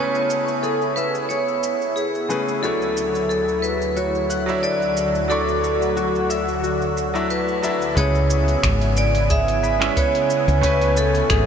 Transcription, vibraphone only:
0, 0, Header, 1, 2, 480
1, 0, Start_track
1, 0, Tempo, 666667
1, 1896, Time_signature, 4, 2, 24, 8
1, 8253, End_track
2, 0, Start_track
2, 0, Title_t, "Vibraphone"
2, 0, Program_c, 0, 11
2, 0, Note_on_c, 0, 73, 81
2, 453, Note_on_c, 0, 69, 74
2, 469, Note_off_c, 0, 73, 0
2, 562, Note_off_c, 0, 69, 0
2, 691, Note_on_c, 0, 71, 82
2, 800, Note_off_c, 0, 71, 0
2, 928, Note_on_c, 0, 73, 83
2, 1410, Note_on_c, 0, 68, 81
2, 1426, Note_off_c, 0, 73, 0
2, 1892, Note_on_c, 0, 69, 83
2, 1907, Note_off_c, 0, 68, 0
2, 2363, Note_off_c, 0, 69, 0
2, 2372, Note_on_c, 0, 69, 79
2, 2610, Note_on_c, 0, 71, 91
2, 2621, Note_off_c, 0, 69, 0
2, 2836, Note_off_c, 0, 71, 0
2, 2855, Note_on_c, 0, 73, 93
2, 3334, Note_on_c, 0, 74, 97
2, 3350, Note_off_c, 0, 73, 0
2, 3815, Note_on_c, 0, 69, 74
2, 3829, Note_off_c, 0, 74, 0
2, 5227, Note_off_c, 0, 69, 0
2, 5259, Note_on_c, 0, 71, 85
2, 5742, Note_on_c, 0, 73, 97
2, 5752, Note_off_c, 0, 71, 0
2, 6430, Note_off_c, 0, 73, 0
2, 6465, Note_on_c, 0, 74, 101
2, 6704, Note_on_c, 0, 76, 104
2, 6707, Note_off_c, 0, 74, 0
2, 7182, Note_on_c, 0, 73, 98
2, 7194, Note_off_c, 0, 76, 0
2, 7665, Note_on_c, 0, 71, 88
2, 7673, Note_off_c, 0, 73, 0
2, 7884, Note_off_c, 0, 71, 0
2, 7903, Note_on_c, 0, 69, 85
2, 8253, Note_off_c, 0, 69, 0
2, 8253, End_track
0, 0, End_of_file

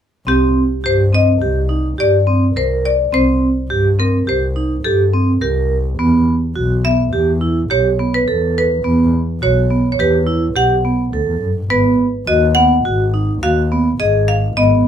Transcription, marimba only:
0, 0, Header, 1, 2, 480
1, 0, Start_track
1, 0, Tempo, 572519
1, 220, Time_signature, 5, 2, 24, 8
1, 12475, End_track
2, 0, Start_track
2, 0, Title_t, "Marimba"
2, 0, Program_c, 0, 12
2, 236, Note_on_c, 0, 67, 66
2, 719, Note_on_c, 0, 72, 74
2, 722, Note_off_c, 0, 67, 0
2, 957, Note_off_c, 0, 72, 0
2, 960, Note_on_c, 0, 75, 74
2, 1677, Note_on_c, 0, 74, 74
2, 1691, Note_off_c, 0, 75, 0
2, 2154, Note_on_c, 0, 72, 66
2, 2162, Note_off_c, 0, 74, 0
2, 2393, Note_off_c, 0, 72, 0
2, 2393, Note_on_c, 0, 74, 67
2, 2631, Note_on_c, 0, 72, 75
2, 2633, Note_off_c, 0, 74, 0
2, 3350, Note_on_c, 0, 70, 62
2, 3366, Note_off_c, 0, 72, 0
2, 3591, Note_off_c, 0, 70, 0
2, 3595, Note_on_c, 0, 72, 60
2, 4062, Note_on_c, 0, 69, 64
2, 4080, Note_off_c, 0, 72, 0
2, 4542, Note_on_c, 0, 67, 49
2, 4553, Note_off_c, 0, 69, 0
2, 4874, Note_off_c, 0, 67, 0
2, 5741, Note_on_c, 0, 76, 69
2, 6463, Note_on_c, 0, 73, 72
2, 6480, Note_off_c, 0, 76, 0
2, 6827, Note_on_c, 0, 71, 66
2, 6830, Note_off_c, 0, 73, 0
2, 7184, Note_off_c, 0, 71, 0
2, 7194, Note_on_c, 0, 71, 62
2, 7904, Note_on_c, 0, 73, 72
2, 7926, Note_off_c, 0, 71, 0
2, 8309, Note_off_c, 0, 73, 0
2, 8319, Note_on_c, 0, 73, 50
2, 8377, Note_off_c, 0, 73, 0
2, 8384, Note_on_c, 0, 71, 64
2, 8857, Note_on_c, 0, 78, 72
2, 8874, Note_off_c, 0, 71, 0
2, 9544, Note_off_c, 0, 78, 0
2, 9811, Note_on_c, 0, 71, 73
2, 10290, Note_on_c, 0, 75, 75
2, 10309, Note_off_c, 0, 71, 0
2, 10519, Note_on_c, 0, 78, 83
2, 10541, Note_off_c, 0, 75, 0
2, 11259, Note_on_c, 0, 77, 78
2, 11271, Note_off_c, 0, 78, 0
2, 11734, Note_on_c, 0, 75, 68
2, 11753, Note_off_c, 0, 77, 0
2, 11973, Note_on_c, 0, 77, 71
2, 11984, Note_off_c, 0, 75, 0
2, 12215, Note_on_c, 0, 75, 77
2, 12223, Note_off_c, 0, 77, 0
2, 12475, Note_off_c, 0, 75, 0
2, 12475, End_track
0, 0, End_of_file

